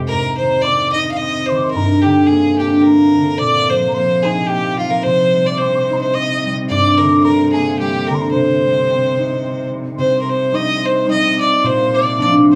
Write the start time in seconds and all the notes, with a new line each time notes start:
Already playing: F2 C3 G#3 C4 D#4
0.07 G#2 A#4 A#5
0.37 D#3 C5
0.62 C4 D5 D6
0.92 D#4 D#5
0.97 D#6
1.11 F5
1.17 C4 D#5
1.22 D#6
1.46 C5 C6
1.51 D#3
1.56 D6
1.64 C6
1.71 A#4
1.75 G2 A#5
2.02 D3 G4 G5
2.27 A#3 G#4 G#5
2.58 D4 G4 G5
2.82 A#3 A#4 A#5
3.16 D3
3.38 A#2 D5 D6
3.43 C3
3.70 F3 C5
3.88 A#5
3.93 A#3 C5 C6
4.23 D#4 G#4 G#5
4.47 G4 G5
4.51 A#3
4.78 F3 F4 F5
4.90 A#4
5.03 C3 C5 C6
5.35 G3
5.46 D5 D6
5.58 C4 C5 C6
5.76 C6 D6
5.90 D#4 A#5
5.97 C6
6.01 C5
6.14 C4 D#5 D#6
6.45 G3
6.69 G2 D5 D6
6.98 D3 A#4
7.23 G3 A#4 A#5
7.52 A#3 G#4 G#5
7.79 G3 G4 G5
8.06 D3 A#4
8.11 A#5
8.15 C6
8.22 A#5
8.31 C5 C6
8.35 C3
8.65 G3
8.91 C4
9.19 D#4
9.43 C4
9.72 G3
9.96 C3 C5 C6
10.21 A#4
10.30 C5
10.52 G3 C4 D#4 D#5 D#6
10.83 C5 C6
11.07 G3 C4 D#4 D#5 D#6
11.38 D5 D6
11.63 A#2 C5 C6
11.94 D5 D6
12.18 F3 A#3 D4 D5 D6
12.50 C5 C6